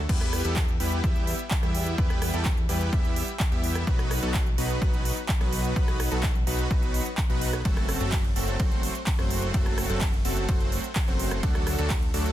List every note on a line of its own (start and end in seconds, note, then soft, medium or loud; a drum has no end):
0.09 0.42 E2 loud
0.09 0.42 G3 loud
0.09 0.42 B3 medium
0.09 0.42 E4 medium
0.09 0.42 G4 medium
0.09 0.42 B4 loud
0.09 kick loud
0.09 closed hi-hat medium
0.09 crash medium
0.21 cross-stick medium
0.21 closed hi-hat soft
0.33 cross-stick medium
0.33 open hi-hat loud
0.45 0.78 E2 loud
0.45 0.60 G3 medium
0.45 0.60 B3 medium
0.45 0.60 E4 medium
0.45 0.60 G4 medium
0.45 0.60 A4 loud
0.45 closed hi-hat medium
0.56 kick loud
0.56 clap loud
0.56 closed hi-hat medium
0.68 closed hi-hat soft
0.80 1.01 E2 medium
0.80 1.01 G3 medium
0.80 1.01 B3 medium
0.80 1.01 E4 medium
0.80 1.01 G4 medium
0.80 1.01 B4 medium
0.80 open hi-hat loud
0.92 closed hi-hat medium
1.04 1.34 E2 loud
1.04 1.36 G3 medium
1.04 1.36 B3 medium
1.04 1.36 E4 medium
1.04 1.36 G4 medium
1.04 1.36 E5 medium
1.04 kick loud
1.04 closed hi-hat medium
1.16 closed hi-hat soft
1.27 open hi-hat loud
1.39 closed hi-hat medium
1.51 kick loud
1.51 clap loud
1.51 closed hi-hat medium
1.63 1.96 E2 medium
1.63 1.95 G3 medium
1.63 1.95 B3 medium
1.63 1.95 E4 medium
1.63 1.95 G4 medium
1.63 1.95 E5 medium
1.63 cross-stick medium
1.63 closed hi-hat soft
1.75 open hi-hat loud
1.86 closed hi-hat medium
1.98 2.31 E2 loud
1.98 2.31 G3 loud
1.98 2.31 B3 medium
1.98 2.31 E4 medium
1.98 2.31 G4 medium
1.98 2.31 B4 loud
1.98 kick loud
1.98 closed hi-hat medium
2.10 cross-stick medium
2.10 closed hi-hat soft
2.22 cross-stick medium
2.22 open hi-hat loud
2.34 2.67 E2 medium
2.34 2.49 G3 medium
2.34 2.49 B3 medium
2.34 2.49 E4 medium
2.34 2.49 G4 medium
2.34 2.49 A4 loud
2.34 closed hi-hat medium
2.45 kick loud
2.45 clap loud
2.45 closed hi-hat medium
2.57 closed hi-hat soft
2.69 2.90 E2 medium
2.69 2.90 G3 medium
2.69 2.90 B3 medium
2.69 2.90 E4 medium
2.69 2.90 G4 medium
2.69 2.90 B4 medium
2.69 open hi-hat loud
2.81 closed hi-hat medium
2.93 3.23 E2 loud
2.93 3.25 G3 medium
2.93 3.25 B3 medium
2.93 3.25 E4 medium
2.93 3.25 G4 medium
2.93 3.25 E5 medium
2.93 kick loud
2.93 closed hi-hat medium
3.05 closed hi-hat soft
3.16 open hi-hat loud
3.28 closed hi-hat medium
3.40 kick loud
3.40 clap loud
3.40 closed hi-hat medium
3.52 3.85 E2 loud
3.52 3.84 G3 medium
3.52 3.84 B3 medium
3.52 3.84 E4 medium
3.52 3.84 G4 medium
3.52 3.84 E5 medium
3.52 closed hi-hat soft
3.64 open hi-hat loud
3.75 cross-stick medium
3.75 closed hi-hat medium
3.87 4.20 B1 loud
3.87 4.20 F#3 loud
3.87 4.20 B3 medium
3.87 4.20 D#4 medium
3.87 4.20 F#4 medium
3.87 4.20 B4 loud
3.87 kick loud
3.87 closed hi-hat medium
3.99 cross-stick medium
3.99 closed hi-hat soft
4.11 cross-stick medium
4.11 open hi-hat loud
4.23 4.56 B1 loud
4.23 4.38 F#3 medium
4.23 4.38 B3 medium
4.23 4.38 D#4 medium
4.23 4.38 F#4 medium
4.23 4.38 A4 loud
4.23 closed hi-hat soft
4.34 kick loud
4.34 clap loud
4.34 closed hi-hat medium
4.46 closed hi-hat soft
4.58 4.79 B1 medium
4.58 4.79 F#3 medium
4.58 4.79 B3 medium
4.58 4.79 D#4 medium
4.58 4.79 F#4 medium
4.58 4.79 B4 medium
4.58 open hi-hat loud
4.70 closed hi-hat medium
4.82 5.12 B1 loud
4.82 5.14 F#3 medium
4.82 5.14 B3 medium
4.82 5.14 D#4 medium
4.82 5.14 F#4 medium
4.82 5.14 B4 medium
4.82 kick loud
4.82 closed hi-hat medium
4.94 closed hi-hat soft
5.05 open hi-hat loud
5.17 closed hi-hat medium
5.29 kick loud
5.29 clap loud
5.29 closed hi-hat medium
5.41 5.74 B1 loud
5.41 5.73 F#3 medium
5.41 5.73 B3 medium
5.41 5.73 D#4 medium
5.41 5.73 F#4 medium
5.41 5.73 B4 medium
5.41 cross-stick medium
5.41 closed hi-hat soft
5.53 open hi-hat loud
5.64 closed hi-hat medium
5.76 6.09 F#3 loud
5.76 6.09 B3 medium
5.76 6.09 D#4 medium
5.76 6.09 F#4 medium
5.76 6.09 B4 loud
5.76 kick loud
5.76 closed hi-hat medium
5.88 cross-stick medium
5.88 closed hi-hat soft
6.00 cross-stick medium
6.00 open hi-hat loud
6.12 6.45 B1 loud
6.12 6.27 F#3 medium
6.12 6.27 B3 medium
6.12 6.27 D#4 medium
6.12 6.27 F#4 medium
6.12 6.27 A4 loud
6.12 closed hi-hat medium
6.23 kick loud
6.23 clap loud
6.23 closed hi-hat medium
6.35 closed hi-hat soft
6.47 6.68 B1 medium
6.47 6.68 F#3 medium
6.47 6.68 B3 medium
6.47 6.68 D#4 medium
6.47 6.68 F#4 medium
6.47 6.68 B4 medium
6.47 open hi-hat loud
6.59 closed hi-hat soft
6.71 7.03 F#3 medium
6.71 7.03 B3 medium
6.71 7.03 D#4 medium
6.71 7.03 F#4 medium
6.71 7.03 B4 medium
6.71 kick loud
6.71 closed hi-hat medium
6.82 closed hi-hat soft
6.94 open hi-hat loud
7.06 closed hi-hat medium
7.18 kick loud
7.18 clap loud
7.18 closed hi-hat medium
7.30 7.63 B1 loud
7.30 7.54 F#3 loud
7.30 7.54 B3 medium
7.30 7.54 D#4 medium
7.30 7.54 F#4 loud
7.30 7.54 B4 loud
7.30 closed hi-hat soft
7.41 open hi-hat loud
7.53 cross-stick medium
7.53 closed hi-hat soft
7.65 7.98 F#1 loud
7.65 7.98 F#3 loud
7.65 7.98 A3 medium
7.65 7.98 C4 medium
7.65 7.98 F#4 medium
7.65 7.98 A4 loud
7.65 kick loud
7.65 closed hi-hat medium
7.65 ride medium
7.77 cross-stick medium
7.77 closed hi-hat soft
7.89 cross-stick medium
7.89 open hi-hat loud
8.01 8.34 F#1 loud
8.01 8.16 F#3 medium
8.01 8.16 A3 medium
8.01 8.16 C4 medium
8.01 8.16 F#4 medium
8.01 8.16 A4 loud
8.01 closed hi-hat medium
8.12 kick loud
8.12 clap loud
8.12 closed hi-hat medium
8.12 ride medium
8.24 closed hi-hat soft
8.36 8.57 F#1 medium
8.36 8.57 F#3 medium
8.36 8.57 A3 medium
8.36 8.57 C4 medium
8.36 8.57 F#4 medium
8.36 8.57 A4 medium
8.36 open hi-hat loud
8.48 closed hi-hat medium
8.60 8.90 F#1 loud
8.60 8.92 F#3 medium
8.60 8.92 A3 medium
8.60 8.92 C4 medium
8.60 8.92 F#4 medium
8.60 8.92 C5 medium
8.60 kick loud
8.60 closed hi-hat medium
8.60 ride medium
8.71 closed hi-hat soft
8.83 open hi-hat loud
8.95 closed hi-hat medium
9.07 kick loud
9.07 clap loud
9.07 closed hi-hat medium
9.07 ride medium
9.19 9.52 F#1 loud
9.19 9.51 F#3 medium
9.19 9.51 A3 medium
9.19 9.51 C4 medium
9.19 9.51 F#4 medium
9.19 9.51 C5 medium
9.19 cross-stick medium
9.19 closed hi-hat soft
9.30 open hi-hat loud
9.42 closed hi-hat soft
9.54 9.87 F#3 loud
9.54 9.87 A3 medium
9.54 9.87 C4 medium
9.54 9.87 F#4 medium
9.54 9.87 A4 loud
9.54 kick loud
9.54 closed hi-hat medium
9.54 ride medium
9.66 cross-stick medium
9.66 closed hi-hat soft
9.78 cross-stick medium
9.78 open hi-hat loud
9.90 10.23 F#1 loud
9.90 10.05 F#3 loud
9.90 10.05 A3 medium
9.90 10.05 C4 medium
9.90 10.05 F#4 medium
9.90 10.05 A4 loud
9.90 closed hi-hat medium
10.01 kick loud
10.01 clap loud
10.01 closed hi-hat medium
10.01 ride medium
10.13 closed hi-hat soft
10.25 10.46 F#1 medium
10.25 10.46 F#3 medium
10.25 10.46 A3 medium
10.25 10.46 C4 medium
10.25 10.46 F#4 medium
10.25 10.46 A4 medium
10.25 open hi-hat loud
10.37 closed hi-hat medium
10.49 10.81 F#3 medium
10.49 10.81 A3 medium
10.49 10.81 C4 medium
10.49 10.81 F#4 medium
10.49 10.81 C5 medium
10.49 kick loud
10.49 closed hi-hat medium
10.49 ride medium
10.60 closed hi-hat soft
10.72 open hi-hat loud
10.84 closed hi-hat medium
10.96 kick loud
10.96 clap loud
10.96 closed hi-hat medium
10.96 ride medium
11.08 11.41 F#1 loud
11.08 11.40 F#3 medium
11.08 11.40 A3 medium
11.08 11.40 C4 medium
11.08 11.40 F#4 medium
11.08 11.40 C5 medium
11.08 closed hi-hat soft
11.19 open hi-hat loud
11.31 cross-stick medium
11.31 closed hi-hat medium
11.43 11.76 F#3 loud
11.43 11.76 A3 medium
11.43 11.76 D4 medium
11.43 11.76 F#4 medium
11.43 11.76 A4 loud
11.43 kick loud
11.43 closed hi-hat medium
11.43 ride medium
11.55 cross-stick medium
11.55 closed hi-hat soft
11.67 cross-stick medium
11.67 open hi-hat loud
11.79 12.12 D2 loud
11.79 11.94 F#3 loud
11.79 11.94 A3 medium
11.79 11.94 D4 medium
11.79 11.94 F#4 medium
11.79 11.94 A4 loud
11.79 closed hi-hat medium
11.90 kick loud
11.90 clap loud
11.90 closed hi-hat medium
11.90 ride medium
12.02 closed hi-hat soft
12.14 12.32 D2 medium
12.14 12.32 F#3 medium
12.14 12.32 A3 medium
12.14 12.32 D4 medium
12.14 12.32 F#4 medium
12.14 12.32 A4 medium
12.14 open hi-hat loud
12.26 closed hi-hat medium